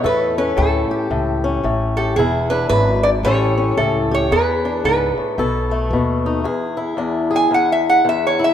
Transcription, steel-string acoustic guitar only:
Already playing: A3
0.03 A2 A4
0.38 C#4
0.57 A2
0.91 G4
1.11 A2
1.44 C#4
1.64 A2
1.98 G4
2.18 E2 E4
2.51 D4
2.71 F#2
3.03 G#2
3.25 A2 C#4 G4 A4
3.58 C#4
3.78 A2
4.11 G4
4.31 E2 G#4
4.65 D4
4.85 G#2
5.17 A2
5.38 B2 A4
5.71 A3
5.93 B2
6.26 D#4
6.44 E2 G#4
6.77 E4
6.97 E2 D4
7.31 G#4
7.51 E2
8.05 E2
8.39 E4

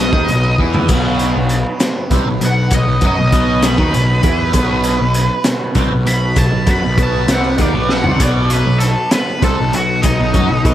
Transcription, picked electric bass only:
Already playing: B1
0.13 D#2
0.28 B1
0.58 E2
0.89 B1
1.36 B1
2.10 C2
2.26 B1
2.41 B1
2.71 B1
2.88 B1
3.02 F#2
3.19 B1
3.33 B1
3.78 D#2
3.94 B1
4.23 E2
4.54 B1
5.01 B1
5.75 C2
5.91 B1
6.07 B1
6.37 B1
6.52 B1
6.67 F#2
6.82 B1
6.98 B1
7.28 C2
7.59 D#2
7.74 B1
8.06 C2
8.20 B1
8.66 B1
9.42 C2
9.59 B1
9.74 B1
10.04 B1
10.20 B1
10.34 F#2
10.49 B1
10.65 B1

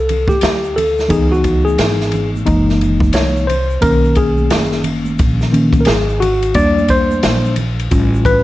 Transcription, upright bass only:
Already playing: C2
0.42 D2
1.10 C#2
1.78 G#1
2.47 F#1
3.15 C2
3.83 B1
4.52 F#1
5.19 A#1
5.87 G#1
6.55 E2
7.23 A#1
7.92 A1

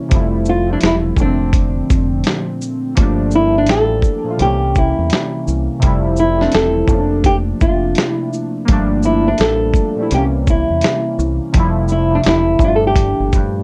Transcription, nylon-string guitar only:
0.49 F4
0.73 D4
0.85 E4
1.21 D4
3.35 E4
3.58 D4
3.70 A4
4.42 G4
4.78 E4
6.19 E4
6.41 D4
6.55 A4
7.26 G4
7.62 F4
8.09 E4
9.05 E4
9.28 D4
9.41 A4
10.15 G4
10.50 E4
11.92 E4
12.15 D4
12.28 E4
12.64 F4
12.76 A4
12.87 G4

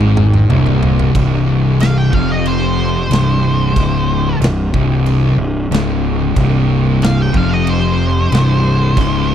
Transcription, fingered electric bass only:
Already playing: G#1
0.48 C1
1.15 C1
2.13 F1
3.10 C1
3.76 C#1
4.39 C1
4.74 C1
5.37 C1
5.71 C#1
6.36 C1
7.34 F1
8.31 C1
8.97 C#1

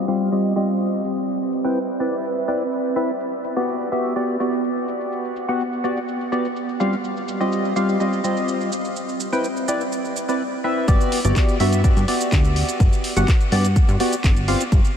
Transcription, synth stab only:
0.08 G3 C4 F4 G4 F5
0.32 G3 C4 F4 G4 D#5
0.56 G3 C4 F4 G4 D#5
1.64 C4 E4 B4 G5
2.00 C4 E4 B4 D5
2.48 C4 E4 B4 D5
2.96 C4 E4 B4 E5
3.57 B3 F#4 G4 D5
3.92 B3 F#4 G4 E5
4.16 B3 F#4 G4 D5
4.40 B3 F#4 G4 D5
5.49 B3 F#4 G4 F#5
5.84 B3 F#4 G4 D5
6.32 B3 F#4 G4 D5
6.80 G3 C4 F4 G4 F5
7.41 G3 C4 F4 G4 D#5
7.76 G3 C4 F4 G4 F5
8.00 G3 C4 F4 G4 D#5
8.24 G3 C4 F4 G4 D#5
9.33 C4 E4 B4 G5
9.68 C4 E4 B4 D5
10.29 C4 E4 B4 D5
10.64 C4 E4 B4 E5
10.88 B3 F#4 G4 D5
11.25 B3 F#4 G4 D5
11.60 B3 F#4 G4 E5
11.84 B3 F#4 G4 D5
12.08 B3 F#4 G4 D5
13.17 B3 F#4 G4 F#5
13.52 B3 F#4 G4 D5
14.00 B3 F#4 G4 D5
14.48 C4 F4 G4 F5

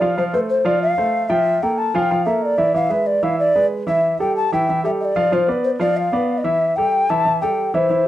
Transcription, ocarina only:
Already playing: D5
0.17 C5
0.34 B4
0.49 C5
0.66 D5
0.82 F5
1.29 E5
1.63 G5
1.78 A5
1.95 G#5
1.99 G5
2.25 E5
2.42 D5 D#5
2.75 F5
2.91 E5
3.07 D5
3.23 F5
3.39 D5
3.88 E5
4.20 G5
4.36 A5
4.53 G5
4.85 E5
5.00 D#5
5.05 D5
5.33 C5
5.64 C5
5.81 D5
5.97 F5
6.38 D#5
6.44 E5
6.76 G5
7.09 A5
7.41 G5
7.74 C5

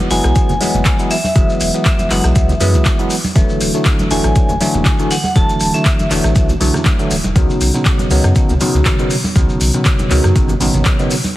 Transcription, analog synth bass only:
0.11 F#1
0.24 B1
0.49 F#1
0.74 F#1
1.36 F#1
1.61 E1
2.11 F#1
2.24 B1
2.36 C#2
2.61 F#2
2.74 C#2
3.36 E1
3.61 D1
4.11 E1
4.24 A1
4.49 E1
4.74 E1
5.36 E1
5.61 D1
6.11 E1
6.24 A1
6.36 B1
6.61 B1
7.11 D1
7.24 E1
7.36 C#2
7.61 B1
8.11 C#2
8.24 F#2
8.49 C#2
8.74 C#2
9.36 C#2
9.61 B1
10.11 C#2
10.24 F#2
10.36 G#1
10.61 G#1
10.74 G#1

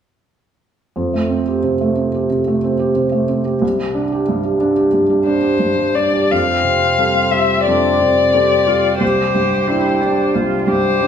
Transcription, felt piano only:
0.96 F2
1.14 A3
1.30 C4
1.47 G4
1.64 C3
1.81 A3
1.97 C4
2.14 G4
2.30 C3
2.48 A3
2.64 C4
2.79 G4
2.96 C3
3.12 A3
3.29 C4
3.45 G4
3.62 C2
3.78 G3
3.94 D4
4.12 G4
4.29 G2
4.44 G3
4.60 D4
4.76 G4
4.93 G2
5.09 G3
5.26 D4
5.42 G4
5.59 G2
5.77 G3
5.95 D4
6.13 G4
6.31 F2
6.64 C3
6.98 G3 C4 A4
7.33 G3
7.67 F2
8.01 C3
8.34 G3 C4 A4
8.67 G3
9.00 C2
9.35 G2
9.68 G3 D4 G4
10.02 G3
10.35 C2
10.67 G2
11.01 G3 D4 G4

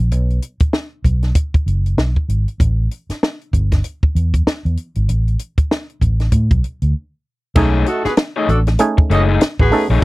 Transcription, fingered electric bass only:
0.00 A#1
0.12 B1
0.61 muted fingered electric bass stroke
1.05 B1
1.55 muted fingered electric bass stroke
1.66 F#1
1.97 B1
2.29 G#1
2.60 A1
3.09 muted fingered electric bass stroke
3.53 G1
4.03 muted fingered electric bass stroke
4.15 E2
4.47 muted fingered electric bass stroke
4.65 E2
4.96 G#1
5.09 A1
5.58 muted fingered electric bass stroke
6.01 A1
6.32 A2
6.51 B1
6.82 D2
7.56 B1
8.05 muted fingered electric bass stroke
8.49 A1
8.98 muted fingered electric bass stroke
9.10 F#1
9.59 A1
9.90 A#1

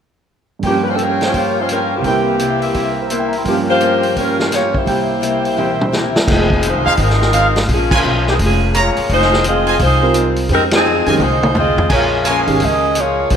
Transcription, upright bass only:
6.28 F1
6.75 C2
6.86 D#2
6.98 G#1
7.68 A#1
8.04 B1
8.39 F1
8.98 muted upright bass stroke
9.09 F1
9.80 C2
10.49 F2
11.07 F#2
11.19 C2
11.77 F2
11.90 A#1
12.48 G#1
12.60 C#2
13.31 A#1

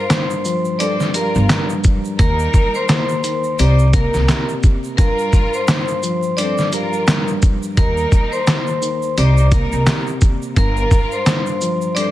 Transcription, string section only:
Already playing: G3 F4 A#4
0.80 C4 A4 C5
1.16 G3 F4 A#4
2.19 G3 D#4 A#4
3.59 G3 D#4 C5
3.95 G3 D#4 A#4
4.97 G3 F4 A#4
6.39 C4 A4 C5
6.73 G3 F4 A#4
7.78 G3 D#4 A#4
9.18 G3 D#4 C5
9.53 G3 D#4 A#4
10.57 G3 F4 A#4
11.96 C4 A4 C5

